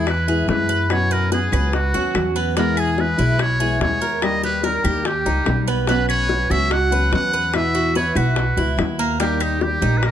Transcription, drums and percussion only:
0.07 high bongo medium
0.07 claves medium
0.28 high bongo soft
0.49 high bongo medium
0.49 low bongo medium
0.69 high bongo soft
0.90 high bongo medium
0.90 claves medium
1.11 high bongo soft
1.32 high bongo medium
1.52 high bongo soft
1.52 claves medium
1.73 high bongo medium
1.94 high bongo soft
2.15 high bongo medium
2.15 low bongo medium
2.15 claves medium
2.57 high bongo medium
2.77 claves medium
2.98 high bongo medium
3.19 high bongo soft
3.39 high bongo medium
3.39 claves medium
3.60 high bongo soft
3.81 high bongo medium
3.81 low bongo medium
4.02 high bongo soft
4.22 high bongo medium
4.22 claves medium
4.43 high bongo soft
4.63 high bongo medium
4.84 high bongo soft
4.84 claves medium
5.05 high bongo medium
5.26 high bongo soft
5.46 high bongo medium
5.46 low bongo medium
5.46 claves medium
5.87 high bongo medium
6.09 claves medium
6.29 high bongo medium
6.51 high bongo soft
6.71 high bongo medium
6.71 claves medium
6.92 high bongo soft
7.13 high bongo medium
7.13 low bongo medium
7.33 high bongo soft
7.54 high bongo medium
7.54 claves medium
7.75 high bongo soft
7.96 high bongo medium
8.16 high bongo soft
8.16 claves medium
8.36 high bongo medium
8.57 high bongo soft
8.79 high bongo medium
8.79 low bongo medium
8.79 claves medium
9.20 high bongo medium
9.41 claves medium
9.61 high bongo medium
9.82 high bongo soft
10.03 high bongo medium
10.03 claves medium

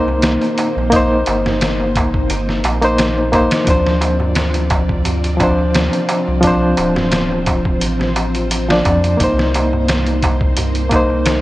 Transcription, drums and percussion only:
0.08 darbuka tek soft
0.22 snare loud
0.22 closed hi-hat medium
0.22 darbuka tek medium
0.42 closed hi-hat soft
0.42 darbuka tek soft
0.58 closed hi-hat medium
0.58 darbuka tek medium
0.78 darbuka tek soft
0.92 kick loud
0.92 closed hi-hat medium
0.92 darbuka tek medium
1.11 darbuka tek soft
1.26 closed hi-hat medium
1.26 darbuka tek medium
1.46 snare medium
1.46 darbuka tek soft
1.46 darbuka dum medium
1.61 snare loud
1.61 closed hi-hat medium
1.61 darbuka tek medium
1.80 darbuka tek soft
1.96 kick loud
1.96 closed hi-hat medium
1.96 darbuka tek loud
2.14 kick medium
2.14 darbuka tek soft
2.30 closed hi-hat medium
2.30 darbuka tek medium
2.49 snare soft
2.49 darbuka tek soft
2.64 closed hi-hat medium
2.64 darbuka tek loud
2.82 closed hi-hat soft
2.82 darbuka tek soft
2.98 snare loud
2.98 closed hi-hat medium
2.98 darbuka tek medium
3.18 darbuka tek soft
3.33 kick medium
3.33 closed hi-hat medium
3.33 darbuka tek medium
3.51 snare loud
3.51 closed hi-hat medium
3.51 darbuka tek soft
3.67 kick loud
3.67 closed hi-hat medium
3.67 darbuka tek medium
3.86 snare soft
3.86 darbuka tek soft
4.01 closed hi-hat medium
4.01 darbuka tek medium
4.20 darbuka tek soft
4.20 darbuka dum medium
4.36 snare loud
4.36 closed hi-hat medium
4.36 darbuka tek medium
4.54 closed hi-hat soft
4.54 darbuka tek soft
4.70 kick loud
4.70 closed hi-hat medium
4.70 darbuka tek loud
4.89 kick loud
4.89 darbuka tek soft
5.05 closed hi-hat medium
5.05 darbuka tek medium
5.05 darbuka dum medium
5.24 closed hi-hat soft
5.24 darbuka tek soft
5.40 kick medium
5.40 closed hi-hat medium
5.40 darbuka tek loud
5.58 darbuka tek soft
5.74 snare loud
5.74 closed hi-hat medium
5.74 darbuka tek medium
5.93 closed hi-hat soft
5.93 darbuka tek soft
6.09 closed hi-hat medium
6.09 darbuka tek medium
6.28 darbuka tek soft
6.43 kick loud
6.43 closed hi-hat medium
6.43 darbuka tek medium
6.62 darbuka tek soft
6.78 closed hi-hat medium
6.78 darbuka tek medium
6.96 snare medium
6.96 darbuka tek soft
6.96 darbuka dum medium
7.12 snare loud
7.12 closed hi-hat medium
7.12 darbuka tek soft
7.32 darbuka tek soft
7.46 kick medium
7.46 closed hi-hat medium
7.46 darbuka tek medium
7.65 kick medium
7.65 darbuka tek soft
7.81 closed hi-hat medium
7.81 darbuka tek soft
7.99 snare soft
7.99 darbuka tek soft
8.16 closed hi-hat medium
8.16 darbuka tek medium
8.34 closed hi-hat soft
8.34 darbuka tek soft
8.51 closed hi-hat medium
8.51 darbuka tek medium
8.69 snare loud
8.69 darbuka tek soft
8.85 kick medium
8.85 closed hi-hat medium
8.85 darbuka tek medium
9.04 closed hi-hat soft
9.04 darbuka tek soft
9.20 kick loud
9.20 closed hi-hat medium
9.20 darbuka tek soft
9.38 snare medium
9.38 darbuka tek soft
9.54 closed hi-hat medium
9.54 darbuka tek medium
9.73 darbuka tek soft
9.73 darbuka dum medium
9.89 snare loud
9.89 closed hi-hat medium
9.89 darbuka tek soft
10.07 closed hi-hat soft
10.07 darbuka tek soft
10.23 kick loud
10.23 closed hi-hat medium
10.23 darbuka tek medium
10.41 kick loud
10.41 darbuka tek soft
10.57 closed hi-hat medium
10.57 darbuka tek medium
10.57 darbuka dum medium
10.75 closed hi-hat soft
10.75 darbuka tek soft
10.91 kick medium
10.91 closed hi-hat medium
10.91 darbuka tek medium
11.10 darbuka tek soft
11.25 snare loud
11.25 closed hi-hat loud
11.25 darbuka tek medium

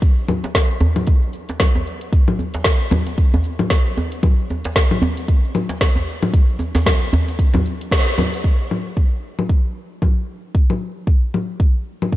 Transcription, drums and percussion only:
0.02 kick loud
0.02 closed hi-hat medium
0.02 cabasa soft
0.19 cabasa soft
0.28 djembe tone medium
0.28 low conga medium
0.28 cabasa medium
0.43 closed hi-hat soft
0.43 djembe slap medium
0.43 djembe tone soft
0.43 cabasa soft
0.55 kick loud
0.55 snare loud
0.55 closed hi-hat medium
0.55 cabasa soft
0.71 cabasa soft
0.81 djembe slap medium
0.81 djembe tone medium
0.81 djembe bass medium
0.81 cabasa medium
0.96 closed hi-hat soft
0.96 low conga medium
0.96 cabasa soft
1.07 kick loud
1.07 closed hi-hat medium
1.07 cabasa soft
1.22 cabasa soft
1.33 closed hi-hat soft
1.33 cabasa medium
1.49 closed hi-hat soft
1.49 djembe slap medium
1.49 cabasa soft
1.60 kick loud
1.60 snare loud
1.60 closed hi-hat medium
1.60 low conga medium
1.60 cabasa soft
1.75 djembe slap soft
1.75 djembe tone medium
1.75 cabasa soft
1.87 cabasa medium
2.01 closed hi-hat soft
2.01 cabasa soft
2.13 kick loud
2.13 closed hi-hat medium
2.13 cabasa soft
2.28 low conga medium
2.28 cabasa soft
2.39 djembe tone medium
2.39 cabasa medium
2.54 closed hi-hat soft
2.54 djembe slap medium
2.54 djembe tone soft
2.54 cabasa soft
2.64 kick loud
2.64 snare loud
2.64 closed hi-hat medium
2.64 cabasa soft
2.81 cabasa soft
2.91 djembe slap medium
2.91 low conga medium
2.91 djembe bass medium
2.91 cabasa medium
3.07 closed hi-hat soft
3.07 djembe slap soft
3.07 cabasa soft
3.18 kick loud
3.18 closed hi-hat medium
3.18 cabasa soft
3.34 djembe slap medium
3.34 djembe bass medium
3.34 cabasa soft
3.44 closed hi-hat soft
3.44 cabasa medium
3.59 closed hi-hat soft
3.59 low conga medium
3.59 cabasa soft
3.70 kick loud
3.70 snare medium
3.70 closed hi-hat medium
3.70 cabasa soft
3.86 cabasa soft
3.97 djembe tone medium
3.97 cabasa medium
4.12 closed hi-hat soft
4.12 cabasa soft
4.23 kick loud
4.23 closed hi-hat medium
4.23 low conga medium
4.23 cabasa soft
4.39 cabasa soft
4.50 djembe tone medium
4.50 cabasa medium
4.65 closed hi-hat soft
4.65 djembe slap medium
4.65 djembe tone soft
4.65 cabasa soft
4.76 kick loud
4.76 snare loud
4.76 closed hi-hat medium
4.76 cabasa soft
4.91 low conga medium
4.91 cabasa soft
5.02 djembe slap medium
5.02 djembe tone medium
5.02 djembe bass medium
5.02 cabasa medium
5.17 closed hi-hat soft
5.17 cabasa soft
5.28 kick loud
5.28 closed hi-hat medium
5.28 cabasa soft
5.44 cabasa soft
5.55 closed hi-hat soft
5.55 low conga medium
5.55 cabasa medium
5.69 closed hi-hat soft
5.69 djembe slap medium
5.69 cabasa soft
5.81 kick medium
5.81 snare medium
5.81 closed hi-hat medium
5.81 cabasa soft
5.96 djembe slap soft
5.96 djembe tone medium
5.96 cabasa soft
6.08 cabasa medium
6.23 closed hi-hat soft
6.23 low conga medium
6.23 cabasa soft
6.34 kick loud
6.34 closed hi-hat medium
6.34 cabasa soft
6.49 cabasa soft
6.59 closed hi-hat soft
6.59 djembe tone medium
6.59 cabasa medium
6.75 snare soft
6.75 closed hi-hat soft
6.75 djembe slap medium
6.75 djembe tone soft
6.75 djembe bass medium
6.75 cabasa soft
6.86 kick loud
6.86 snare loud
6.86 closed hi-hat medium
6.86 low conga medium
6.86 cabasa soft
7.03 cabasa soft
7.13 closed hi-hat soft
7.13 djembe slap medium
7.13 djembe tone medium
7.13 djembe bass medium
7.13 cabasa medium
7.28 closed hi-hat soft
7.28 djembe slap soft
7.28 cabasa soft
7.39 kick loud
7.39 closed hi-hat medium
7.39 cabasa soft
7.54 djembe slap medium
7.54 djembe bass medium
7.54 low conga medium
7.54 cabasa soft
7.66 closed hi-hat soft
7.66 cabasa medium
7.81 closed hi-hat soft
7.81 cabasa soft
7.91 kick loud
7.91 snare loud
7.91 closed hi-hat medium
7.91 cabasa soft
8.08 cabasa soft
8.18 djembe tone medium
8.18 low conga medium
8.18 cabasa medium
8.34 closed hi-hat soft
8.34 cabasa soft
8.44 kick medium
8.71 low conga medium
8.97 kick medium
9.39 low conga medium
9.49 kick medium
10.02 kick medium
10.02 low conga medium
10.55 kick loud
10.70 low conga medium
11.07 kick loud
11.34 low conga medium
11.60 kick medium
12.02 low conga medium
12.12 kick medium

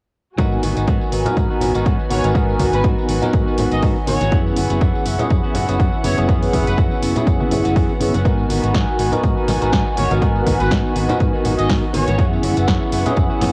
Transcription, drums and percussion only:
0.38 kick loud
0.38 closed hi-hat medium
0.38 tambourine medium
0.52 tambourine soft
0.63 open hi-hat loud
0.63 high conga medium
0.77 closed hi-hat medium
0.77 tambourine medium
0.87 kick loud
0.87 closed hi-hat medium
0.87 tambourine medium
1.01 tambourine soft
1.12 open hi-hat loud
1.26 closed hi-hat medium
1.26 tambourine medium
1.26 low conga medium
1.36 kick loud
1.36 closed hi-hat soft
1.36 tambourine medium
1.51 tambourine soft
1.60 open hi-hat loud
1.60 low conga medium
1.74 closed hi-hat medium
1.74 tambourine medium
1.85 kick loud
1.85 closed hi-hat medium
1.85 tambourine medium
1.99 tambourine soft
2.10 open hi-hat loud
2.10 high conga medium
2.24 closed hi-hat medium
2.24 tambourine medium
2.35 kick loud
2.35 closed hi-hat medium
2.35 tambourine medium
2.49 tambourine soft
2.59 kick medium
2.59 open hi-hat loud
2.59 high conga medium
2.73 closed hi-hat medium
2.73 tambourine medium
2.84 kick loud
2.84 closed hi-hat medium
2.84 tambourine medium
2.98 tambourine soft
3.09 open hi-hat loud
3.22 closed hi-hat medium
3.22 tambourine medium
3.22 low conga medium
3.33 kick loud
3.33 closed hi-hat soft
3.48 tambourine soft
3.58 open hi-hat loud
3.58 low conga medium
3.72 closed hi-hat medium
3.72 tambourine medium
3.83 kick loud
3.83 open hi-hat medium
3.83 tambourine medium
3.96 tambourine soft
4.07 open hi-hat loud
4.07 high conga medium
4.21 closed hi-hat medium
4.21 tambourine medium
4.32 kick loud
4.32 closed hi-hat soft
4.46 tambourine soft
4.56 open hi-hat loud
4.56 high conga medium
4.70 closed hi-hat medium
4.70 tambourine medium
4.81 kick loud
4.81 closed hi-hat soft
4.81 tambourine medium
4.95 tambourine soft
5.06 open hi-hat loud
5.19 closed hi-hat medium
5.19 tambourine medium
5.19 low conga medium
5.30 kick loud
5.30 closed hi-hat soft
5.30 tambourine medium
5.44 tambourine soft
5.54 open hi-hat loud
5.54 low conga medium
5.68 closed hi-hat medium
5.68 tambourine medium
5.80 kick loud
5.80 closed hi-hat soft
5.80 tambourine medium
5.92 tambourine soft
6.04 open hi-hat loud
6.04 high conga medium
6.18 closed hi-hat medium
6.18 tambourine medium
6.29 kick loud
6.29 closed hi-hat soft
6.29 tambourine medium
6.43 open hi-hat medium
6.43 tambourine soft
6.53 kick medium
6.53 open hi-hat loud
6.53 high conga medium
6.67 closed hi-hat medium
6.67 tambourine medium
6.78 kick loud
6.78 closed hi-hat soft
6.91 tambourine soft
7.03 open hi-hat loud
7.16 closed hi-hat medium
7.16 tambourine medium
7.16 low conga medium
7.27 kick loud
7.27 closed hi-hat soft
7.27 tambourine medium
7.40 tambourine soft
7.40 high conga medium
7.51 open hi-hat loud
7.51 low conga medium
7.65 closed hi-hat medium
7.65 tambourine medium
7.76 kick loud
7.76 open hi-hat medium
7.89 tambourine soft
8.00 open hi-hat loud
8.00 high conga medium
8.14 closed hi-hat medium
8.14 tambourine medium
8.25 kick loud
8.25 closed hi-hat medium
8.25 tambourine medium
8.38 tambourine soft
8.49 open hi-hat loud
8.49 high conga medium
8.63 closed hi-hat medium
8.63 tambourine medium
8.74 kick loud
8.74 snare loud
8.74 closed hi-hat soft
8.74 tambourine medium
8.89 tambourine soft
8.99 open hi-hat loud
9.12 closed hi-hat medium
9.12 tambourine medium
9.12 low conga medium
9.24 kick loud
9.24 closed hi-hat soft
9.24 tambourine medium
9.37 tambourine soft
9.48 snare medium
9.48 open hi-hat loud
9.48 low conga medium
9.61 closed hi-hat medium
9.61 tambourine medium
9.73 kick loud
9.73 snare loud
9.73 closed hi-hat soft
9.87 tambourine soft
9.97 open hi-hat loud
9.97 high conga medium
10.11 closed hi-hat medium
10.11 tambourine medium
10.22 kick loud
10.22 closed hi-hat soft
10.22 tambourine medium
10.36 tambourine soft
10.47 kick medium
10.47 open hi-hat loud
10.47 high conga medium
10.60 closed hi-hat medium
10.60 tambourine medium
10.71 kick loud
10.71 snare loud
10.71 closed hi-hat medium
10.85 tambourine soft
10.96 open hi-hat loud
11.09 closed hi-hat medium
11.09 tambourine medium
11.09 low conga medium
11.20 kick loud
11.20 closed hi-hat soft
11.20 tambourine medium
11.35 tambourine soft
11.45 open hi-hat loud
11.45 low conga medium
11.58 closed hi-hat medium
11.58 tambourine medium
11.70 kick loud
11.70 snare loud
11.70 open hi-hat medium
11.83 tambourine soft
11.94 open hi-hat loud
11.94 high conga medium
12.08 closed hi-hat medium
12.08 tambourine medium
12.18 kick loud
12.18 closed hi-hat medium
12.18 tambourine medium
12.33 tambourine soft
12.43 open hi-hat loud
12.43 high conga medium
12.57 closed hi-hat medium
12.57 tambourine medium
12.67 kick loud
12.67 snare loud
12.67 closed hi-hat medium
12.67 tambourine medium
12.83 tambourine soft
12.92 open hi-hat loud
13.06 closed hi-hat medium
13.06 tambourine medium
13.06 low conga medium
13.16 kick loud
13.16 closed hi-hat medium
13.16 tambourine medium
13.30 tambourine soft
13.41 snare medium
13.41 open hi-hat loud
13.41 low conga medium

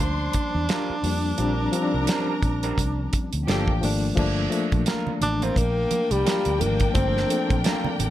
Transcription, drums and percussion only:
0.00 closed hi-hat medium
0.33 kick medium
0.33 closed hi-hat medium
0.69 snare loud
0.69 closed hi-hat medium
1.04 open hi-hat soft
1.38 closed hi-hat medium
1.73 closed hi-hat medium
2.07 snare loud
2.07 closed hi-hat medium
2.43 kick medium
2.43 closed hi-hat medium
2.63 closed hi-hat soft
2.78 kick medium
2.78 closed hi-hat medium
3.13 kick medium
3.13 closed hi-hat medium
3.33 closed hi-hat soft
3.48 snare medium
3.48 closed hi-hat medium
3.68 kick medium
3.83 open hi-hat medium
4.17 kick loud
4.17 crash medium
4.52 closed hi-hat medium
4.72 kick medium
4.72 closed hi-hat soft
4.72 high conga medium
4.86 snare loud
4.86 closed hi-hat medium
4.86 muted conga soft
5.07 low conga medium
5.22 closed hi-hat medium
5.22 muted conga soft
5.22 low conga medium
5.42 closed hi-hat soft
5.42 high conga medium
5.56 kick medium
5.56 closed hi-hat medium
5.56 muted conga soft
5.91 closed hi-hat medium
5.91 high conga medium
6.11 closed hi-hat soft
6.27 snare loud
6.27 closed hi-hat medium
6.27 muted conga soft
6.45 closed hi-hat soft
6.61 closed hi-hat soft
6.61 muted conga soft
6.61 low conga medium
6.80 kick medium
6.80 closed hi-hat soft
6.80 high conga medium
6.95 kick loud
6.95 closed hi-hat medium
7.17 snare soft
7.30 closed hi-hat medium
7.50 kick loud
7.50 closed hi-hat soft
7.50 high conga medium
7.64 snare loud
7.64 closed hi-hat medium
7.64 muted conga soft
7.84 low conga medium
7.99 closed hi-hat medium
7.99 low conga medium

